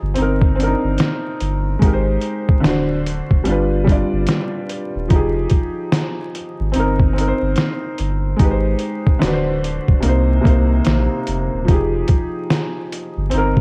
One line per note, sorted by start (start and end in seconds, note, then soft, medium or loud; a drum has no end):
0.00 0.16 G1 medium
0.00 0.19 F3 medium
0.00 0.18 D#4 medium
0.00 0.19 G4 medium
0.00 0.19 G#4 medium
0.14 0.50 C4 medium
0.14 0.52 D#4 medium
0.14 closed hi-hat medium
0.19 0.75 G1 loud
0.19 0.54 A#4 medium
0.42 kick medium
0.55 1.52 C4 medium
0.55 0.67 D4 medium
0.60 1.56 A#4 medium
0.60 closed hi-hat medium
0.66 1.58 D#4 medium
0.84 0.98 G1 medium
0.98 snare medium
0.98 closed hi-hat medium
1.40 1.76 G1 medium
1.40 closed hi-hat medium
1.79 2.17 G#1 loud
1.79 2.63 G#3 medium
1.79 2.64 D#4 medium
1.79 kick loud
1.79 closed hi-hat medium
1.85 2.65 G4 medium
1.85 1.92 A#4 medium
1.93 2.67 C5 medium
2.21 closed hi-hat medium
2.49 kick medium
2.60 3.31 D3 medium
2.60 3.33 D4 medium
2.64 3.21 D1 loud
2.64 3.34 F#4 medium
2.64 3.35 C5 medium
2.64 snare loud
2.64 closed hi-hat medium
3.06 closed hi-hat medium
3.31 3.45 E1 medium
3.31 kick medium
3.44 4.03 G1 loud
3.44 3.80 G3 medium
3.44 3.81 D4 medium
3.44 closed hi-hat medium
3.49 3.82 F4 medium
3.49 3.83 B4 medium
3.84 4.81 G3 medium
3.84 4.83 D4 medium
3.84 kick medium
3.89 4.84 F4 medium
3.89 4.85 D5 medium
3.89 closed hi-hat medium
4.13 4.26 G1 medium
4.27 snare loud
4.27 closed hi-hat medium
4.69 closed hi-hat medium
4.96 5.09 D#1 medium
5.08 5.46 F1 loud
5.08 6.34 F3 medium
5.08 6.35 D#4 medium
5.08 kick loud
5.08 closed hi-hat medium
5.13 6.36 G4 medium
5.13 6.37 G#4 medium
5.50 kick medium
5.50 closed hi-hat medium
5.92 snare loud
5.92 closed hi-hat medium
6.35 closed hi-hat medium
6.60 6.73 G#1 medium
6.72 7.08 C4 medium
6.72 7.10 D#4 medium
6.72 closed hi-hat medium
6.76 7.32 G1 loud
6.76 7.12 A#4 medium
6.99 kick medium
7.13 8.10 C4 medium
7.13 8.12 D#4 medium
7.18 7.26 A#4 medium
7.18 closed hi-hat medium
7.28 8.17 C5 medium
7.42 7.55 G1 medium
7.56 snare medium
7.56 closed hi-hat medium
7.98 8.34 G1 medium
7.98 closed hi-hat medium
8.36 8.75 G#1 loud
8.36 9.20 G#3 medium
8.36 9.21 D#4 medium
8.36 kick loud
8.36 closed hi-hat medium
8.42 9.23 G4 medium
8.42 8.50 B4 medium
8.51 9.27 C5 medium
8.79 closed hi-hat medium
9.07 kick medium
9.19 9.90 D3 medium
9.19 9.91 D4 medium
9.19 snare medium
9.19 closed hi-hat medium
9.23 9.79 D1 medium
9.23 9.92 F#4 medium
9.23 9.32 B4 medium
9.33 9.97 C5 medium
9.64 closed hi-hat medium
9.88 10.02 E1 medium
9.88 kick medium
10.00 10.37 C3 medium
10.00 10.38 A#3 medium
10.00 closed hi-hat medium
10.05 10.39 C2 medium
10.05 10.39 D#4 medium
10.05 10.41 C5 medium
10.41 11.38 C3 medium
10.41 11.40 A#3 medium
10.45 10.81 C2 medium
10.45 11.41 D#4 medium
10.45 11.42 C5 medium
10.45 kick medium
10.45 closed hi-hat medium
10.85 11.08 A#1 loud
10.85 snare medium
10.85 closed hi-hat medium
11.27 11.49 F1 medium
11.27 closed hi-hat medium
11.54 11.67 D#1 medium
11.65 12.91 F3 medium
11.65 12.92 D#4 medium
11.65 kick loud
11.65 closed hi-hat medium
11.69 12.04 F1 loud
11.69 12.93 G4 medium
11.69 12.95 G#4 medium
12.08 kick medium
12.08 closed hi-hat medium
12.50 snare medium
12.50 closed hi-hat medium
12.92 closed hi-hat medium
13.17 13.31 G1 medium
13.30 13.61 G1 loud
13.30 13.61 C4 medium
13.30 closed hi-hat medium
13.34 13.61 D#4 medium
13.34 13.61 A#4 medium
13.57 kick medium